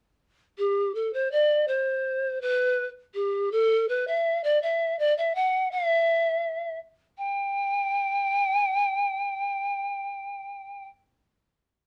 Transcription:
0.58 G4
0.95 A4
1.13 C5
1.31 D5
1.68 C5
2.41 B4
3.14 G4
3.52 A4
3.89 B4
4.08 E5
4.44 D5
4.62 E5
4.99 D5
5.17 E5
5.35 F#5
5.71 E5
7.18 G5

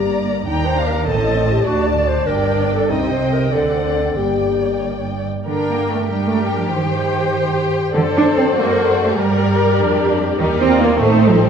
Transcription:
Already playing: G1 G2 A#3 G4 D5 A#5
0.45 D#2 D4 D#4 G5 A#5
0.67 C5
0.77 F5
0.87 A#4
1.06 A1 A2 C4 A4 D#5 A5
1.52 G4
1.66 D2 D4 F#4 D5 A5
1.88 D5
2.08 C5
2.27 G1 G2 D4 A#4 D5 G5
2.75 A4
2.90 C2 C3 C4 D#4 D#5 G5
3.12 C5
3.33 A#4
3.52 D2 D3 C4 A4 D5 F#5
4.17 G1 G2 A#3 G4 D5 G5
5.47 G2 D3 D4 A#4 G5
5.69 A#3
5.90 A3
6.09 G3 D4 G4 A#4 G5
6.27 A3
6.41 G3
6.57 F3
6.71 G2 D#3 G4 C5 G5
7.33 G4
7.94 F#2 D3 A4 C5 D5
8.16 D4
8.36 C4
8.55 A#3 F#4
9.02 A3
9.17 G2 G3 G4 A#4 D5
9.79 F2 D4
10.38 D#2 D#3 D#4 G4 A#4 D5
10.60 C4
10.69 F4
10.79 A#3
10.97 A1 A3 C4 D#4 A4 C5
11.27 F3
11.43 G3

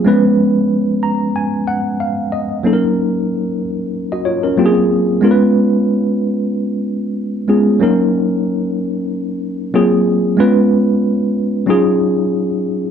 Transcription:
0.05 F3 G#3 B3 C#4 B4
1.03 A#5
1.36 G#5
1.68 F#5
2.00 F5
2.32 D#5
2.63 F#3 A#3 C#4 D#4 A4
2.73 A#4
4.12 F#4 D#5
4.25 F4 C#5
4.43 C#4 A#4
4.57 F#3 A#3 C4 F4 G4
4.66 G#4
5.21 G#3 B3 C#4 F4 A#4
5.31 B4
7.48 G#3 B3 C#4 F4 G#4
7.79 F#3 A#3 C#4 D#4 A#4
9.74 F#3 A#3 C4 F4 G#4
10.37 G#3 B3 C#4 F4 B4
11.66 F#3 C#4 D#4 F4 G#4

